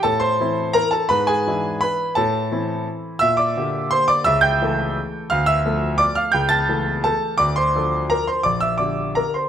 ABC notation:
X:1
M:3/4
L:1/8
Q:1/4=170
K:Aphr
V:1 name="Grand piano"
[Aa] [cc']3 [Bb] [Aa] | [=B=b] [^G^g]3 [Bb]2 | [Aa]4 z2 | [ee'] [dd']3 [cc'] [dd'] |
[ee'] [gg']4- [gg'] | [ff'] [ee']3 [dd'] [ff'] | [gg'] [aa']3 [Aa]2 | [dd'] [cc']3 [Bb] [cc'] |
[dd'] [ee'] [dd']2 [Bb] [cc'] |]
V:2 name="Grand piano" clef=bass
A,,2 [E,CE]4 | ^G,,2 [E,DE]4 | A,,2 [E,CE]4 | B,,2 [D,B,G]4 |
^C,,2 [E,A,A]4 | D,,2 [F,A,A]4 | ^C,,2 [E,A,A]4 | D,,2 [F,DA]4 |
B,,,2 [D,DG]4 |]